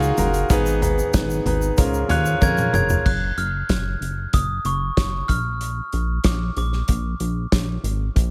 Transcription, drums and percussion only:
0.02 shaker soft
0.18 closed hi-hat medium
0.18 floor tom medium
0.18 shaker medium
0.34 closed hi-hat soft
0.34 shaker soft
0.50 kick loud
0.50 closed hi-hat medium
0.50 shaker medium
0.66 shaker soft
0.82 closed hi-hat medium
0.82 floor tom medium
0.82 shaker medium
0.99 shaker medium
1.14 kick loud
1.14 snare loud
1.14 closed hi-hat medium
1.14 shaker medium
1.30 shaker soft
1.46 closed hi-hat medium
1.46 floor tom medium
1.62 shaker soft
1.78 kick loud
1.78 closed hi-hat loud
1.78 shaker medium
1.94 shaker soft
2.09 closed hi-hat medium
2.09 floor tom medium
2.26 shaker medium
2.42 kick loud
2.42 high tom medium
2.42 shaker medium
2.57 mid tom medium
2.57 shaker soft
2.74 mid tom medium
2.74 shaker soft
2.90 floor tom medium
2.90 shaker soft
3.06 kick medium
3.06 crash medium
3.38 closed hi-hat medium
3.69 kick medium
3.69 snare medium
3.69 closed hi-hat medium
4.02 closed hi-hat medium
4.33 kick medium
4.33 closed hi-hat medium
4.65 closed hi-hat medium
4.97 kick loud
4.97 snare loud
4.97 closed hi-hat medium
5.29 kick medium
5.29 closed hi-hat medium
5.61 closed hi-hat medium
5.93 closed hi-hat medium
6.24 kick medium
6.24 snare loud
6.24 closed hi-hat medium
6.57 closed hi-hat medium
6.73 snare soft
6.88 kick medium
6.88 closed hi-hat medium
7.20 closed hi-hat medium
7.52 kick medium
7.52 snare loud
7.52 closed hi-hat medium
7.84 closed hi-hat medium
8.16 kick medium
8.16 closed hi-hat medium

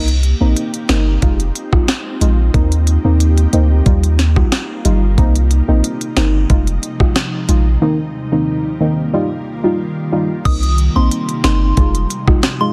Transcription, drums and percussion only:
0.08 closed hi-hat medium
0.23 closed hi-hat medium
0.56 closed hi-hat medium
0.74 closed hi-hat medium
0.89 cross-stick medium
0.89 snare loud
0.89 closed hi-hat medium
1.22 kick medium
1.22 closed hi-hat medium
1.40 closed hi-hat medium
1.55 closed hi-hat medium
1.73 kick loud
1.73 cross-stick loud
1.88 cross-stick medium
1.88 snare loud
1.88 closed hi-hat medium
2.21 closed hi-hat medium
2.54 kick loud
2.54 closed hi-hat medium
2.72 closed hi-hat medium
2.87 closed hi-hat medium
3.20 closed hi-hat medium
3.38 closed hi-hat medium
3.53 closed hi-hat medium
3.86 kick medium
3.86 closed hi-hat medium
4.04 closed hi-hat medium
4.19 snare medium
4.19 closed hi-hat medium
4.36 kick medium
4.36 cross-stick loud
4.52 cross-stick medium
4.52 snare loud
4.52 closed hi-hat medium
4.85 closed hi-hat medium
5.18 kick loud
5.18 closed hi-hat medium
5.35 closed hi-hat medium
5.51 closed hi-hat medium
5.84 closed hi-hat medium
6.01 closed hi-hat medium
6.17 cross-stick loud
6.17 snare loud
6.17 closed hi-hat medium
6.50 kick medium
6.50 closed hi-hat medium
6.67 closed hi-hat medium
6.83 closed hi-hat medium
7.00 kick medium
7.00 cross-stick loud
7.16 cross-stick medium
7.16 snare loud
7.16 closed hi-hat medium
7.49 closed hi-hat medium
10.45 kick loud
10.45 closed hi-hat medium
10.45 crash loud
10.63 closed hi-hat medium
10.78 closed hi-hat medium
11.11 closed hi-hat medium
11.29 closed hi-hat medium
11.44 cross-stick medium
11.44 snare loud
11.44 closed hi-hat medium
11.77 kick loud
11.77 closed hi-hat medium
11.95 closed hi-hat medium
12.10 closed hi-hat medium
12.28 kick medium
12.28 cross-stick loud
12.43 cross-stick medium
12.43 snare loud
12.43 closed hi-hat medium

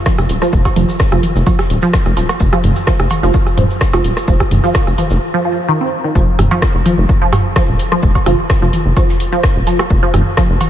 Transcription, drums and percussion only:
0.06 kick loud
0.06 cross-stick medium
0.06 snare loud
0.06 closed hi-hat medium
0.06 cabasa medium
0.18 cross-stick medium
0.18 cabasa soft
0.29 closed hi-hat medium
0.29 open hi-hat medium
0.42 cross-stick medium
0.42 cabasa medium
0.53 kick loud
0.53 closed hi-hat medium
0.53 cabasa medium
0.65 kick medium
0.65 cross-stick soft
0.65 cowbell medium
0.65 cabasa soft
0.76 closed hi-hat medium
0.76 open hi-hat medium
0.76 high tom medium
0.89 cabasa medium
0.99 kick loud
0.99 cross-stick medium
0.99 snare loud
0.99 closed hi-hat medium
0.99 cabasa medium
1.12 cross-stick medium
1.12 cabasa soft
1.23 closed hi-hat medium
1.23 open hi-hat medium
1.23 high tom medium
1.36 cabasa medium
1.47 kick loud
1.47 closed hi-hat medium
1.47 cowbell medium
1.47 cabasa medium
1.59 cross-stick medium
1.59 snare medium
1.59 cabasa soft
1.70 closed hi-hat medium
1.70 open hi-hat medium
1.82 cabasa medium
1.93 kick loud
1.93 cross-stick medium
1.93 snare loud
1.93 closed hi-hat medium
1.93 cabasa medium
2.05 cross-stick soft
2.05 closed hi-hat soft
2.05 cabasa soft
2.17 snare soft
2.17 closed hi-hat medium
2.17 open hi-hat medium
2.29 cross-stick medium
2.29 closed hi-hat soft
2.29 cowbell medium
2.29 cabasa medium
2.40 kick loud
2.40 closed hi-hat medium
2.40 cabasa medium
2.53 cross-stick medium
2.53 cabasa soft
2.63 closed hi-hat medium
2.63 mid tom medium
2.63 open hi-hat medium
2.63 high tom medium
2.76 cabasa medium
2.87 kick loud
2.87 cross-stick medium
2.87 snare loud
2.87 closed hi-hat medium
2.87 cabasa medium
2.99 cross-stick medium
2.99 cabasa soft
3.10 closed hi-hat medium
3.10 open hi-hat medium
3.10 high tom medium
3.10 cowbell medium
3.24 cabasa medium
3.34 kick loud
3.34 closed hi-hat medium
3.34 cabasa medium
3.46 cross-stick soft
3.46 cabasa soft
3.57 closed hi-hat medium
3.57 mid tom medium
3.57 open hi-hat medium
3.70 cabasa medium
3.81 kick loud
3.81 cross-stick medium
3.81 snare loud
3.81 closed hi-hat medium
3.81 cabasa medium
3.93 cross-stick medium
3.93 cowbell medium
3.93 cabasa soft
4.04 closed hi-hat medium
4.04 open hi-hat medium
4.17 cross-stick medium
4.17 cabasa medium
4.28 kick loud
4.28 closed hi-hat medium
4.28 cabasa medium
4.40 kick medium
4.40 cross-stick medium
4.40 cabasa soft
4.51 closed hi-hat medium
4.51 mid tom medium
4.51 open hi-hat medium
4.51 high tom medium
4.64 cabasa medium
4.74 kick loud
4.74 cross-stick medium
4.74 snare loud
4.74 closed hi-hat medium
4.74 cowbell medium
4.74 cabasa medium
4.87 cross-stick soft
4.87 cabasa soft
4.98 closed hi-hat medium
4.98 open hi-hat medium
4.98 high tom medium
5.10 cabasa medium
6.15 kick loud
6.15 closed hi-hat medium
6.39 cross-stick medium
6.39 closed hi-hat medium
6.39 mid tom medium
6.39 open hi-hat medium
6.39 high tom medium
6.51 cowbell medium
6.62 kick loud
6.62 cross-stick medium
6.62 snare loud
6.62 closed hi-hat medium
6.85 closed hi-hat medium
6.85 open hi-hat medium
6.85 high tom medium
7.09 kick loud
7.09 closed hi-hat medium
7.33 cross-stick medium
7.33 closed hi-hat medium
7.33 mid tom medium
7.33 open hi-hat medium
7.33 cowbell medium
7.56 kick loud
7.56 cross-stick medium
7.56 snare loud
7.56 closed hi-hat medium
7.79 closed hi-hat medium
7.79 open hi-hat medium
7.92 cross-stick medium
8.02 kick loud
8.02 closed hi-hat loud
8.15 kick medium
8.15 cowbell medium
8.26 cross-stick medium
8.26 closed hi-hat medium
8.26 open hi-hat medium
8.26 high tom medium
8.50 kick loud
8.50 cross-stick medium
8.50 snare loud
8.50 closed hi-hat medium
8.73 closed hi-hat medium
8.73 open hi-hat loud
8.73 high tom medium
8.97 kick loud
8.97 closed hi-hat medium
8.97 cowbell medium
9.09 snare medium
9.20 closed hi-hat medium
9.20 open hi-hat loud
9.43 kick loud
9.43 cross-stick loud
9.43 snare loud
9.43 closed hi-hat medium
9.56 closed hi-hat soft
9.66 snare soft
9.66 closed hi-hat medium
9.66 open hi-hat medium
9.79 cross-stick medium
9.79 closed hi-hat soft
9.79 cowbell medium
9.90 kick loud
9.90 closed hi-hat medium
10.14 cross-stick medium
10.14 closed hi-hat medium
10.14 mid tom medium
10.14 open hi-hat loud
10.14 high tom medium
10.37 kick loud
10.37 cross-stick medium
10.37 snare loud
10.37 closed hi-hat medium
10.61 closed hi-hat medium
10.61 open hi-hat loud
10.61 high tom medium
10.61 cowbell medium

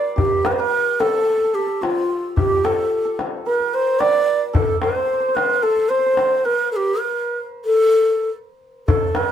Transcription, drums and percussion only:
0.18 tombak dum medium
0.45 tombak tek medium
1.00 tombak tek medium
1.41 tombak ka soft
1.83 tombak tek medium
2.37 tombak dum medium
2.65 tombak tek medium
3.19 tombak tek medium
3.60 tombak ka soft
4.01 tombak tek medium
4.55 tombak dum medium
4.82 tombak tek medium
5.37 tombak tek medium
5.77 tombak ka soft
6.17 tombak tek medium
8.88 tombak dum medium
9.15 tombak tek medium

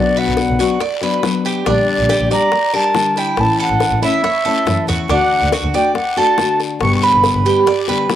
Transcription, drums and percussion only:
0.37 high bongo medium
0.37 short guiro medium
0.59 high bongo soft
0.59 short guiro medium
0.80 high bongo medium
0.80 long guiro medium
1.01 high bongo soft
1.23 high bongo medium
1.23 low bongo medium
1.23 short guiro medium
1.45 high bongo soft
1.45 short guiro medium
1.66 high bongo medium
1.66 long guiro medium
2.09 high bongo medium
2.09 short guiro medium
2.31 high bongo soft
2.31 short guiro medium
2.52 high bongo medium
2.52 long guiro medium
2.73 high bongo soft
2.95 high bongo medium
2.95 low bongo medium
2.95 short guiro medium
3.16 high bongo soft
3.16 short guiro medium
3.37 high bongo medium
3.37 long guiro medium
3.80 high bongo medium
3.80 short guiro medium
4.02 high bongo soft
4.02 short guiro medium
4.24 high bongo medium
4.24 long guiro medium
4.46 high bongo soft
4.67 high bongo medium
4.67 low bongo medium
4.67 short guiro medium
4.88 high bongo soft
4.88 short guiro medium
5.09 high bongo medium
5.09 long guiro medium
5.52 high bongo medium
5.52 short guiro medium
5.74 high bongo soft
5.74 short guiro medium
5.95 high bongo medium
5.95 long guiro medium
6.17 high bongo soft
6.38 high bongo medium
6.38 low bongo medium
6.38 short guiro medium
6.60 high bongo soft
6.60 short guiro medium
6.81 high bongo medium
6.81 long guiro medium
7.23 high bongo medium
7.23 short guiro medium
7.45 high bongo soft
7.45 short guiro medium
7.67 high bongo medium
7.67 long guiro medium
7.88 high bongo soft
8.10 high bongo medium
8.10 low bongo medium
8.10 short guiro medium

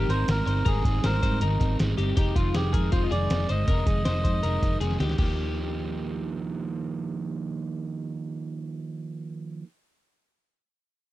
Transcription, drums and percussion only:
0.10 snare soft
0.10 closed hi-hat medium
0.28 snare loud
0.28 closed hi-hat medium
0.48 closed hi-hat medium
0.66 kick loud
0.66 closed hi-hat medium
0.85 kick medium
0.85 closed hi-hat medium
1.04 snare loud
1.04 closed hi-hat medium
1.23 kick medium
1.23 closed hi-hat medium
1.41 closed hi-hat medium
1.61 kick medium
1.61 snare soft
1.61 closed hi-hat medium
1.79 snare medium
1.79 closed hi-hat medium
1.98 closed hi-hat medium
2.17 kick medium
2.17 closed hi-hat medium
2.36 kick medium
2.36 closed hi-hat medium
2.54 snare medium
2.54 closed hi-hat medium
2.74 kick medium
2.74 closed hi-hat medium
2.92 kick medium
2.92 closed hi-hat medium
3.12 snare soft
3.12 closed hi-hat medium
3.30 snare medium
3.30 closed hi-hat medium
3.49 closed hi-hat medium
3.68 kick loud
3.68 closed hi-hat medium
3.87 kick medium
3.87 closed hi-hat medium
4.05 snare medium
4.05 closed hi-hat medium
4.25 kick medium
4.25 closed hi-hat medium
4.43 closed hi-hat medium
4.63 kick medium
4.63 snare soft
4.63 closed hi-hat medium
4.81 snare soft
4.81 closed hi-hat medium
4.91 snare soft
5.00 snare medium
5.00 closed hi-hat medium
5.09 snare medium
5.18 kick medium
5.18 crash medium

